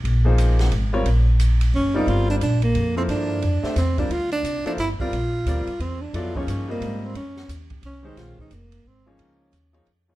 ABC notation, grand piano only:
X:1
M:3/4
L:1/8
Q:"Swing" 1/4=177
K:Bblyd
V:1 name="Grand piano"
z [F,B,_E_Ac]3 z [G,CFB_d] | z4 z [G,CFBd]- | [G,CFBd]2 z3 [F,B,EAc]- | [F,B,EAc]2 z [A,DGce] z [G,CFBd] |
z3 [F,B,EAc] z [G,CFBd] | z2 [G,CFBd] z3 | [^F,=B,EAd] [=F,_B,_E_A_d]2 [G,CFB_e]3 | z4 z [_E,_A,_DGc]- |
[_E,_A,_DGc]2 z3 [F,B,_E_A_d]- | [F,B,_E_A_d]2 z [F,B,EAd] z [F,B,EAd] |]